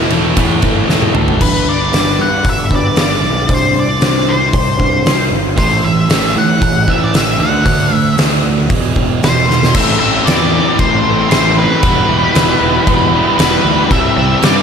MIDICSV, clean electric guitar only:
0, 0, Header, 1, 2, 480
1, 0, Start_track
1, 0, Tempo, 520382
1, 1303, Time_signature, 4, 2, 24, 8
1, 13490, End_track
2, 0, Start_track
2, 0, Title_t, "Clean electric guitar"
2, 0, Program_c, 0, 27
2, 1286, Note_on_c, 0, 55, 85
2, 1289, Note_on_c, 0, 62, 84
2, 1299, Note_on_c, 0, 59, 79
2, 1299, Note_on_c, 0, 71, 97
2, 1607, Note_off_c, 0, 55, 0
2, 1608, Note_off_c, 0, 62, 0
2, 1613, Note_off_c, 0, 59, 0
2, 1613, Note_off_c, 0, 71, 0
2, 1764, Note_on_c, 0, 55, 79
2, 1766, Note_on_c, 0, 62, 81
2, 1771, Note_on_c, 0, 59, 87
2, 1779, Note_on_c, 0, 71, 83
2, 2086, Note_off_c, 0, 55, 0
2, 2087, Note_off_c, 0, 62, 0
2, 2090, Note_off_c, 0, 59, 0
2, 2093, Note_off_c, 0, 71, 0
2, 2491, Note_on_c, 0, 71, 91
2, 2494, Note_on_c, 0, 59, 89
2, 2499, Note_on_c, 0, 62, 81
2, 2502, Note_on_c, 0, 55, 72
2, 2810, Note_off_c, 0, 71, 0
2, 2811, Note_off_c, 0, 59, 0
2, 2814, Note_off_c, 0, 62, 0
2, 2815, Note_off_c, 0, 55, 0
2, 3217, Note_on_c, 0, 62, 89
2, 3218, Note_on_c, 0, 60, 79
2, 3222, Note_on_c, 0, 67, 89
2, 3224, Note_on_c, 0, 72, 94
2, 3533, Note_off_c, 0, 62, 0
2, 3534, Note_off_c, 0, 60, 0
2, 3536, Note_off_c, 0, 67, 0
2, 3536, Note_off_c, 0, 72, 0
2, 3690, Note_on_c, 0, 60, 83
2, 3693, Note_on_c, 0, 62, 83
2, 3695, Note_on_c, 0, 67, 75
2, 3700, Note_on_c, 0, 72, 89
2, 4010, Note_off_c, 0, 60, 0
2, 4011, Note_off_c, 0, 62, 0
2, 4013, Note_off_c, 0, 67, 0
2, 4015, Note_off_c, 0, 72, 0
2, 4402, Note_on_c, 0, 72, 95
2, 4408, Note_on_c, 0, 67, 87
2, 4411, Note_on_c, 0, 62, 78
2, 4415, Note_on_c, 0, 60, 80
2, 4726, Note_off_c, 0, 72, 0
2, 4730, Note_off_c, 0, 67, 0
2, 4731, Note_off_c, 0, 62, 0
2, 4733, Note_off_c, 0, 60, 0
2, 13490, End_track
0, 0, End_of_file